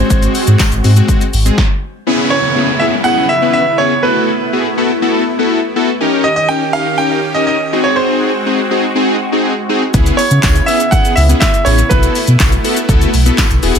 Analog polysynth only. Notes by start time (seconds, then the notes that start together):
Already playing: G#3 C4 F#4
0.84 G#3 C4 F#4
0.96 G#3 C4 F#4
1.45 G#3 C4 G#4
2.07 B3 C#4 E4 G#4
2.56 B3 C#4 E4 G#4
2.81 B3 C#4 E4 G#4
3.05 B3 C#4 E4 G#4
3.42 B3 C#4 E4 B4
3.79 B3 C#4 E4 G#4
4.03 B3 E4 F#4 A4
4.53 B3 E4 F#4 G#4
4.77 B3 E4 F#4 A4
5.02 B3 E4 F#4 A4
5.39 B3 E4 F#4 A4
5.76 B3 E4 F#4 A4
6.00 C#4 D#4 G4 A#4
6.50 C#4 D#4 G4 A#4
6.74 C#4 D#4 G4 A#4
6.99 C#4 D#4 G4 A#4
7.36 C#4 D#4 G4 A#4
7.73 C4 D#4 F#4 G#4
8.46 C4 D#4 F#4 G#4
8.71 C4 D#4 F#4 G#4
8.95 C4 D#4 F#4 G#4
9.32 C4 D#4 F#4 G#4
9.69 C4 D#4 F#4 G#4
9.94 B3 C#4 E4 G#4
10.43 B3 C#4 E4 G#4
10.67 B3 C#4 E4 G#4
10.92 B3 C#4 E4 G#4
11.29 B3 C#4 E4 G#4
11.66 B3 C#4 E4 G#4
11.90 B3 E4 F#4 A4
12.40 B3 E4 F#4 A4
12.64 B3 E4 F#4 A4
12.89 B3 E4 F#4 A4
13.26 B3 E4 F#4 A4
13.62 B3 E4 F#4 G#4